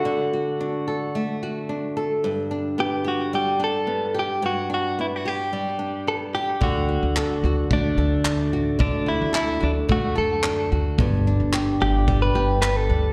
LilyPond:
<<
  \new Staff \with { instrumentName = "Clean electric guitar" } { \time 4/4 \key d \major \tempo 4 = 110 fis'2~ fis'8 r4. | r4 g'8 fis'8 g'8 a'4 g'8 | fis'8 fis'8 e'16 fis'16 g'4. a'8 g'8 | fis'2 d'2 |
d'8 e'8 e'8 d'8 fis'8 a'4 r8 | r4. g'8. b'8. b'16 a'8. | }
  \new Staff \with { instrumentName = "Nylon-string guitar" } { \time 4/4 \key d \major <d a d' fis' a'>8 fis'8 d'8 a'8 a8 fis'8 d'8 a'8 | g,8 d'8 b8 g'8 g8 d'8 b8 g'8 | g,8 d'8 b8 g'8 g8 d'8 b8 g'8 | d8 fis'8 a'8 fis'8 a8 a'8 d'8 fis'8 |
d8 fis'8 a'8 fis'8 a8 a'8 d'8 fis'8 | g,8 d'8 g'8 d'8 g8 g'8 b8 d'8 | }
  \new Staff \with { instrumentName = "Upright bass" } { \clef bass \time 4/4 \key d \major r1 | r1 | r1 | d,8. d,8. d,4 d,4 a,,8 |
d,8. d,8. d,4 fis,4 d,8 | g,,8. g,,8. g,,4 g,,4 d,8 | }
  \new DrumStaff \with { instrumentName = "Drums" } \drummode { \time 4/4 r4 r4 r4 r4 | r4 r4 r4 r4 | r4 r4 r4 r4 | bd4 hc4 bd4 hc4 |
bd4 hc4 bd4 hc4 | bd4 hc4 bd4 hc4 | }
>>